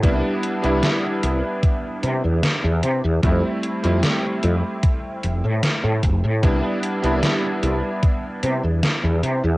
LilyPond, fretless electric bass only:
\new Staff \with { instrumentName = "Fretless electric bass" } { \clef bass \time 4/4 \key c \major \tempo 4 = 75 c,16 r8 c,16 r8 c,16 r8. c16 e,16 r16 e,16 c16 e,16 | f,16 r8 f,16 r8 f,16 r8. f,,16 a,16 r16 a,16 f,,16 a,16 | c,16 r8 c,16 r8 c,16 r8. c16 e,16 r16 e,16 c16 e,16 | }